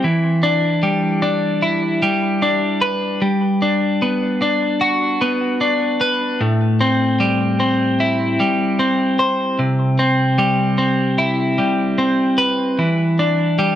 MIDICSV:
0, 0, Header, 1, 2, 480
1, 0, Start_track
1, 0, Key_signature, 1, "minor"
1, 0, Tempo, 796813
1, 22, Time_signature, 4, 2, 24, 8
1, 8285, End_track
2, 0, Start_track
2, 0, Title_t, "Clean electric guitar"
2, 0, Program_c, 0, 27
2, 25, Note_on_c, 0, 52, 72
2, 260, Note_on_c, 0, 62, 73
2, 500, Note_on_c, 0, 55, 73
2, 730, Note_off_c, 0, 62, 0
2, 737, Note_on_c, 0, 62, 74
2, 979, Note_on_c, 0, 64, 77
2, 1217, Note_off_c, 0, 55, 0
2, 1219, Note_on_c, 0, 55, 75
2, 1223, Note_off_c, 0, 52, 0
2, 1453, Note_off_c, 0, 62, 0
2, 1460, Note_on_c, 0, 62, 77
2, 1696, Note_on_c, 0, 71, 82
2, 1938, Note_off_c, 0, 55, 0
2, 1938, Note_on_c, 0, 55, 77
2, 1939, Note_off_c, 0, 71, 0
2, 1940, Note_off_c, 0, 62, 0
2, 1940, Note_off_c, 0, 64, 0
2, 2181, Note_on_c, 0, 62, 74
2, 2422, Note_on_c, 0, 59, 70
2, 2654, Note_off_c, 0, 62, 0
2, 2662, Note_on_c, 0, 62, 75
2, 2897, Note_on_c, 0, 66, 88
2, 3134, Note_off_c, 0, 59, 0
2, 3141, Note_on_c, 0, 59, 72
2, 3372, Note_off_c, 0, 62, 0
2, 3379, Note_on_c, 0, 62, 74
2, 3620, Note_on_c, 0, 71, 90
2, 3859, Note_off_c, 0, 66, 0
2, 3859, Note_on_c, 0, 45, 77
2, 3860, Note_off_c, 0, 62, 0
2, 3860, Note_off_c, 0, 71, 0
2, 3861, Note_off_c, 0, 59, 0
2, 3878, Note_off_c, 0, 55, 0
2, 4100, Note_on_c, 0, 60, 77
2, 4337, Note_on_c, 0, 55, 80
2, 4570, Note_off_c, 0, 60, 0
2, 4577, Note_on_c, 0, 60, 79
2, 4820, Note_on_c, 0, 64, 79
2, 5057, Note_off_c, 0, 55, 0
2, 5059, Note_on_c, 0, 55, 74
2, 5060, Note_off_c, 0, 45, 0
2, 5290, Note_off_c, 0, 60, 0
2, 5297, Note_on_c, 0, 60, 73
2, 5537, Note_on_c, 0, 72, 87
2, 5776, Note_on_c, 0, 48, 73
2, 5779, Note_off_c, 0, 60, 0
2, 5779, Note_off_c, 0, 72, 0
2, 6018, Note_on_c, 0, 60, 69
2, 6253, Note_off_c, 0, 55, 0
2, 6255, Note_on_c, 0, 55, 83
2, 6487, Note_off_c, 0, 60, 0
2, 6494, Note_on_c, 0, 60, 75
2, 6734, Note_off_c, 0, 64, 0
2, 6737, Note_on_c, 0, 64, 76
2, 6975, Note_off_c, 0, 55, 0
2, 6977, Note_on_c, 0, 55, 62
2, 6980, Note_off_c, 0, 48, 0
2, 7211, Note_off_c, 0, 60, 0
2, 7219, Note_on_c, 0, 60, 72
2, 7457, Note_on_c, 0, 71, 86
2, 7700, Note_off_c, 0, 64, 0
2, 7701, Note_off_c, 0, 60, 0
2, 7703, Note_on_c, 0, 52, 69
2, 7947, Note_on_c, 0, 62, 72
2, 8182, Note_off_c, 0, 55, 0
2, 8184, Note_on_c, 0, 55, 78
2, 8285, Note_off_c, 0, 52, 0
2, 8285, Note_off_c, 0, 55, 0
2, 8285, Note_off_c, 0, 62, 0
2, 8285, Note_off_c, 0, 71, 0
2, 8285, End_track
0, 0, End_of_file